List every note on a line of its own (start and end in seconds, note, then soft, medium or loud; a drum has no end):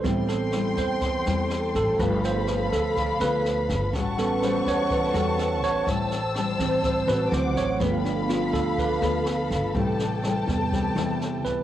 0.00 0.37 G3 soft
0.00 0.37 B3 soft
0.00 0.26 C5 medium
0.04 0.74 A1 medium
0.04 1.00 A2 medium
0.04 0.37 G3 medium
0.04 0.37 C4 soft
0.04 0.37 C4 medium
0.04 0.37 E4 medium
0.04 3.89 A4 medium
0.04 1.97 G5 medium
0.04 1.97 C6 medium
0.04 kick medium
0.04 cross-stick medium
0.04 snare soft
0.29 0.74 A4 medium
0.29 snare soft
0.52 1.02 G3 medium
0.52 1.03 C4 medium
0.52 1.03 E4 medium
0.52 cross-stick medium
0.52 snare soft
0.77 1.23 E2 medium
0.77 1.02 C5 medium
0.77 kick soft
0.77 snare soft
1.00 1.97 E3 medium
1.00 kick medium
1.00 snare soft
1.26 1.76 E2 medium
1.26 1.96 G3 medium
1.26 1.96 C4 medium
1.26 1.96 E4 medium
1.26 snare soft
1.50 cross-stick medium
1.50 snare soft
1.74 1.98 A1 medium
1.74 1.99 A4 medium
1.74 kick soft
1.74 snare soft
1.99 2.68 G1 medium
1.99 2.69 F3 soft
1.99 2.94 G3 medium
1.99 2.69 A3 soft
1.99 2.31 B3 medium
1.99 2.31 F4 medium
1.99 2.31 A4 medium
1.99 2.24 B4 medium
1.99 3.92 F5 medium
1.99 3.92 B5 medium
1.99 kick medium
1.99 snare soft
2.24 2.70 C5 medium
2.24 snare soft
2.47 2.97 B3 medium
2.47 2.97 F4 medium
2.47 2.97 A4 medium
2.47 cross-stick medium
2.47 snare soft
2.72 3.17 D2 medium
2.72 3.18 A4 medium
2.72 kick soft
2.72 snare soft
2.96 3.92 D3 medium
2.96 kick medium
2.96 snare soft
3.20 3.71 D2 medium
3.20 3.90 B3 medium
3.20 3.91 F4 medium
3.20 3.91 A4 medium
3.20 3.45 B4 medium
3.20 cross-stick medium
3.20 snare soft
3.45 snare soft
3.69 3.92 G1 medium
3.69 kick soft
3.69 snare soft
3.93 4.62 A1 medium
3.93 4.89 A2 medium
3.93 4.39 G3 medium
3.93 4.40 C#4 medium
3.93 4.40 F#4 medium
3.93 5.86 B4 medium
3.93 5.86 F#5 medium
3.93 7.30 A5 medium
3.93 5.86 C#6 medium
3.93 kick medium
3.93 cross-stick medium
3.93 snare soft
4.18 5.84 G3 soft
4.18 5.84 B3 soft
4.18 5.84 C#4 soft
4.18 4.42 A4 medium
4.18 snare soft
4.42 5.12 G3 medium
4.42 5.12 C#4 medium
4.42 5.12 F#4 medium
4.42 4.67 C5 medium
4.42 cross-stick medium
4.42 snare soft
4.66 5.11 E2 medium
4.66 5.12 C#5 medium
4.66 kick soft
4.66 snare soft
4.91 5.86 E3 medium
4.91 kick medium
4.91 snare soft
5.14 5.63 E2 loud
5.14 5.84 G3 medium
5.14 5.84 C#4 medium
5.14 5.84 F#4 medium
5.14 5.61 A4 medium
5.14 snare soft
5.38 cross-stick medium
5.38 snare soft
5.63 5.86 A1 medium
5.63 5.78 C#5 medium
5.63 kick soft
5.63 snare soft
5.87 6.56 A1 medium
5.87 6.82 A2 medium
5.87 6.19 G3 medium
5.87 6.19 C4 medium
5.87 6.19 E4 medium
5.87 7.80 C5 medium
5.87 7.32 E6 medium
5.87 kick medium
5.87 snare soft
6.11 snare soft
6.35 7.05 G3 medium
6.35 7.06 C4 medium
6.35 7.06 E4 medium
6.35 cross-stick medium
6.35 snare soft
6.59 7.05 A1 medium
6.59 7.29 E3 soft
6.59 7.29 G3 soft
6.59 7.30 C4 soft
6.59 kick soft
6.59 snare soft
6.83 7.30 A2 medium
6.83 kick medium
6.83 snare soft
7.08 7.31 A1 medium
7.08 7.77 C4 medium
7.08 7.78 F#4 medium
7.08 7.78 A4 medium
7.08 7.32 B4 medium
7.08 cross-stick medium
7.08 snare soft
7.31 7.56 D2 loud
7.31 7.78 E3 soft
7.31 7.79 F#3 soft
7.31 7.79 C4 soft
7.31 7.57 C5 medium
7.31 7.80 F#5 medium
7.31 7.80 D6 medium
7.31 snare soft
7.56 7.79 A1 medium
7.56 7.81 C#5 medium
7.56 kick soft
7.56 snare soft
7.80 8.50 G1 loud
7.80 9.71 F3 soft
7.80 8.76 G3 medium
7.80 9.71 A3 soft
7.80 8.26 B3 medium
7.80 9.72 B3 soft
7.80 8.26 F4 medium
7.80 11.63 A4 medium
7.80 8.26 A4 medium
7.80 8.05 B4 medium
7.80 9.73 F5 medium
7.80 9.73 B5 medium
7.80 kick medium
7.80 cross-stick medium
7.80 snare soft
8.05 8.29 D4 medium
8.05 snare soft
8.29 8.98 B3 medium
8.29 8.99 F4 medium
8.29 8.53 F4 medium
8.29 8.98 A4 medium
8.29 cross-stick medium
8.29 snare soft
8.53 8.99 D2 medium
8.53 8.77 A4 medium
8.53 kick soft
8.53 snare soft
8.78 9.73 D3 medium
8.78 10.20 B4 medium
8.78 kick medium
8.78 snare soft
9.02 9.52 D2 loud
9.02 9.23 B3 medium
9.02 9.23 F4 medium
9.02 9.23 A4 medium
9.02 snare soft
9.26 9.73 B3 soft
9.26 9.74 F4 medium
9.26 9.74 A4 medium
9.26 cross-stick medium
9.26 snare soft
9.50 9.73 G1 medium
9.50 kick soft
9.50 snare soft
9.75 10.44 A1 loud
9.75 10.70 A2 medium
9.75 10.08 C3 soft
9.75 10.20 G3 medium
9.75 10.08 G3 soft
9.75 10.20 C4 medium
9.75 10.20 E4 medium
9.75 11.63 G5 medium
9.75 11.63 A5 medium
9.75 kick medium
9.75 snare soft
9.99 snare soft
10.23 10.69 G3 medium
10.23 10.69 C4 medium
10.23 10.69 E4 medium
10.23 cross-stick medium
10.23 snare soft
10.47 10.93 E2 medium
10.47 10.70 C3 soft
10.47 10.71 G3 soft
10.47 10.71 B3 soft
10.47 kick soft
10.47 snare soft
10.72 11.63 E3 medium
10.72 10.93 G3 medium
10.72 10.93 C4 medium
10.72 10.93 E4 medium
10.72 kick medium
10.72 snare soft
10.96 11.45 E2 medium
10.96 11.63 G3 medium
10.96 11.63 C4 medium
10.96 11.63 E4 medium
10.96 cross-stick medium
10.96 snare soft
11.21 snare soft
11.45 11.63 A1 medium
11.45 11.63 B4 medium
11.45 kick soft
11.45 snare soft